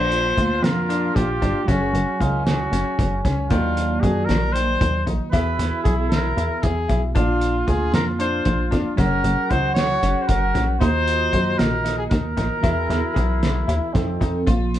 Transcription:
Already playing: analog synth bass A#1, tine electric piano A#2 A#3 D4 F4, grand piano D4, flugelhorn F4, trumpet C5
0.12 closed hi-hat
0.37 analog synth bass D2, grand piano F4, kick, closed hi-hat
0.62 analog synth bass F2, trumpet A#4, snare, closed hi-hat
0.89 grand piano D4, closed hi-hat
1.15 analog synth bass A#1, trumpet G4, kick, closed hi-hat
1.42 analog synth bass G1, grand piano D4, kick, closed hi-hat
1.65 analog synth bass F#1, tine electric piano F#3 C#4 G#4, grand piano C#4, flugelhorn C#4, trumpet F#4, kick, closed hi-hat
1.69 tine electric piano A#4
1.94 analog synth bass F#1, closed hi-hat
2.20 analog synth bass C#2, grand piano D#4, trumpet F4, kick, closed hi-hat
2.46 trumpet F#4, snare, closed hi-hat
2.72 analog synth bass F#1, grand piano C#4, closed hi-hat
2.99 analog synth bass F#1, kick, closed hi-hat
3.25 analog synth bass C#2, grand piano C#4, kick, snare, closed hi-hat
3.48 analog synth bass D#2, tine electric piano D#3 F#3 A#3 F4, grand piano D#3, flugelhorn D4, trumpet F4, kick, closed hi-hat
3.77 closed hi-hat
4.01 analog synth bass F#2, grand piano F#4, trumpet G#4, kick, closed hi-hat
4.25 trumpet A#4, snare, closed hi-hat
4.29 analog synth bass A#1
4.53 grand piano D#3, trumpet C5, closed hi-hat
4.81 analog synth bass D#2, kick, closed hi-hat
5.06 analog synth bass A#1, grand piano D#4, kick, closed hi-hat
5.31 analog synth bass E2, tine electric piano E3 B3 F#4 G#4, grand piano E4, flugelhorn E4, trumpet B4, kick, closed hi-hat
5.59 analog synth bass E2, snare, closed hi-hat
5.83 analog synth bass B1, trumpet G#4, grand piano G#4, kick, closed hi-hat
6.09 trumpet A#4, snare, closed hi-hat
6.36 analog synth bass E2, grand piano E4, closed hi-hat
6.63 analog synth bass E2, trumpet G#4, kick, closed hi-hat
6.88 analog synth bass B1, grand piano E4, kick, closed hi-hat
7.13 analog synth bass A#1, tine electric piano A#2 A#3 D4, grand piano D4, trumpet F4, flugelhorn F4, kick, closed hi-hat
7.17 tine electric piano F4
7.41 closed hi-hat
7.67 analog synth bass D2, grand piano F4, trumpet G#4, kick, closed hi-hat
7.94 analog synth bass F2, trumpet A#4, snare, closed hi-hat
8.19 grand piano D4, trumpet C5, closed hi-hat
8.45 analog synth bass A#1, kick, closed hi-hat
8.71 analog synth bass F2, grand piano D4, kick, snare, closed hi-hat
8.96 analog synth bass F#1, tine electric piano F#3 C#4 G#4 A#4, grand piano C#4, flugelhorn F#4, trumpet A#4, kick, closed hi-hat
9.24 analog synth bass F#1, closed hi-hat
9.50 analog synth bass C#2, grand piano D#4, trumpet C5, kick, closed hi-hat
9.74 trumpet C#5, snare, closed hi-hat
10.03 analog synth bass F#1, grand piano C#4, closed hi-hat
10.22 trumpet C5
10.28 analog synth bass F#1, trumpet A#4, kick, closed hi-hat
10.54 analog synth bass A#1, grand piano C#4, kick, snare, closed hi-hat
10.78 analog synth bass D#2, tine electric piano D#3 A#3 F4 F#4, grand piano D#4, flugelhorn D#4, trumpet C5, kick, closed hi-hat
11.07 closed hi-hat
11.33 analog synth bass F#2, grand piano F#4, kick, closed hi-hat
11.58 analog synth bass A#1, trumpet A#4, snare, closed hi-hat
11.84 grand piano D#4, snare, closed hi-hat
11.98 trumpet G#4
12.11 analog synth bass D#2, trumpet A#4, kick, snare, closed hi-hat
12.37 analog synth bass A#1, grand piano D#4, kick, snare, closed hi-hat
12.61 analog synth bass E2, tine electric piano E3 B3 F#4 G#4, grand piano E4, flugelhorn E4, kick, closed hi-hat
12.90 analog synth bass E2, snare, closed hi-hat
13.14 analog synth bass B1, grand piano G#4, kick, closed hi-hat
13.43 snare, closed hi-hat
13.67 analog synth bass D#2, grand piano E4, closed hi-hat
13.93 analog synth bass F2, tine electric piano F3 C4 D#4 A4, flugelhorn C4, kick, snare, closed hi-hat
14.21 analog synth bass F2, grand piano D#4, kick, closed hi-hat
14.45 analog synth bass A#1, tine electric piano C3 F3 A#3, grand piano F4, kick, closed hi-hat
14.74 snare, closed hi-hat

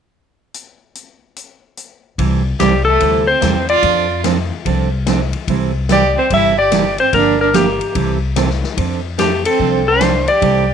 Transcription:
0.54 closed hi-hat
0.95 closed hi-hat
1.36 closed hi-hat
1.77 closed hi-hat
2.18 upright bass C2, steel-string acoustic guitar C3 E3 G3 C4 E4 A4, kick, ride
2.59 upright bass C2, steel-string acoustic guitar C3 E3 G3 C4 E4 A4, fiddle G3, electric slide guitar G4, snare, hi-hat pedal, ride
2.85 fiddle A3, electric slide guitar A4
3.00 upright bass D2, steel-string acoustic guitar C3 E3 G3 C4 E4 A4, kick, ride
3.27 fiddle C4, electric slide guitar C5
3.41 upright bass E2, steel-string acoustic guitar C3 E3 G3 C4 E4 A4, snare, hi-hat pedal, ride
3.69 fiddle F4, electric slide guitar D5, ride
3.83 upright bass F2, steel-string acoustic guitar F3 C4 D4 A4, kick, ride
4.24 steel-string acoustic guitar F3 C4 D4 A4, snare, hi-hat pedal, ride
4.65 upright bass C2, steel-string acoustic guitar F3 C4 D4 A4, kick, ride
5.07 steel-string acoustic guitar F3 C4 D4 A4, snare, hi-hat pedal, ride
5.33 ride
5.48 upright bass C2, steel-string acoustic guitar C3 E3 G3 C4 E4 A4, kick, ride
5.89 steel-string acoustic guitar C3 E3 G3 C4 E4 A4, fiddle G4, electric slide guitar D5, snare, hi-hat pedal, ride
6.17 fiddle C4, electric slide guitar C5
6.30 upright bass G1, steel-string acoustic guitar C3 E3 G3 C4 E4 A4, fiddle E4, electric slide guitar E5, kick, ride
6.59 fiddle G4, electric slide guitar D5
6.71 steel-string acoustic guitar C3 E3 G3 C4 E4 A4, snare, hi-hat pedal, ride
6.98 fiddle C4, electric slide guitar C5, ride
7.13 upright bass G1, steel-string acoustic guitar D3 F3 A#3 D4 G4, fiddle D4, electric slide guitar A#4, kick, ride
7.41 fiddle D4, electric slide guitar A#4
7.53 steel-string acoustic guitar D3 F3 A#3 D4 G4, fiddle A#3, electric slide guitar G4, snare, hi-hat pedal, ride
7.81 ride
7.95 upright bass C2, steel-string acoustic guitar C3 E3 G3 C4 E4 A4, kick, ride
8.36 steel-string acoustic guitar C3 E3 G3 C4 E4 A4, snare, hi-hat pedal, ride
8.50 snare
8.64 snare
8.77 upright bass F2, steel-string acoustic guitar F3 C4 D4 A4, kick, ride
9.18 steel-string acoustic guitar F3 C4 D4 A4, fiddle A3, electric slide guitar G4, snare, hi-hat pedal, ride
9.45 fiddle C4, electric slide guitar A4, ride
9.59 upright bass C2, steel-string acoustic guitar F3 C4 D4 A4, kick
9.87 fiddle D4, electric slide guitar C5
10.01 steel-string acoustic guitar F3 C4 D4 A4, snare, hi-hat pedal, ride
10.28 fiddle G4, electric slide guitar D5, ride
10.41 upright bass C2, steel-string acoustic guitar C3 E3 G3 C4 E4 A4, kick, ride

